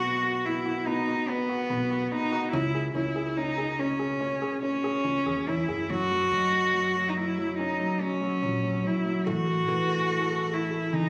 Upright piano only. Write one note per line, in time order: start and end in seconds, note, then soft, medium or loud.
0.00 0.03 B3 medium
0.00 0.44 B3 medium
0.00 0.23 F#4 medium
0.23 0.64 F#4 medium
0.45 0.85 B3 soft
0.66 1.06 F#4 medium
0.87 1.27 B3 medium
1.07 1.48 F#4 soft
1.28 1.68 B3 soft
1.49 1.89 F#4 medium
1.70 2.10 B3 medium
1.91 2.31 F#4 medium
2.11 2.52 B3 medium
2.32 2.52 F#4 medium
2.53 2.93 C#4 medium
2.75 3.14 G#4 soft
2.95 3.36 C#4 medium
3.16 3.56 G#4 medium
3.37 3.78 C#4 medium
3.58 3.98 G#4 medium
3.79 4.19 C#4 soft
3.99 4.40 G#4 medium
4.21 4.61 C#4 medium
4.42 4.82 G#4 soft
4.63 5.03 C#4 soft
4.84 5.25 G#4 medium
5.05 5.46 C#4 soft
5.26 5.67 G#4 soft
5.47 5.88 C#4 soft
5.68 5.89 G#4 soft
5.90 6.10 F#3 medium
6.11 6.30 F#3 soft
6.32 6.51 F#3 medium
6.52 6.72 F#3 soft
6.74 6.95 F#3 medium
6.96 7.15 F#3 medium
7.17 7.37 F#3 soft
7.38 7.79 F#3 medium
7.59 9.23 C#4 medium
7.80 7.99 F#3 soft
8.00 8.20 F#3 medium
8.21 8.41 F#3 medium
8.42 8.62 F#3 soft
8.64 8.83 F#3 soft
8.84 9.04 F#3 medium
9.05 9.26 F#3 medium
9.27 9.46 A3 medium
9.47 9.67 A3 medium
9.68 9.87 A3 medium
9.89 10.08 A3 medium
10.10 10.29 A3 medium
10.30 10.49 A3 medium
10.50 10.70 A3 soft
10.71 11.09 A3 medium
10.93 11.09 E3 medium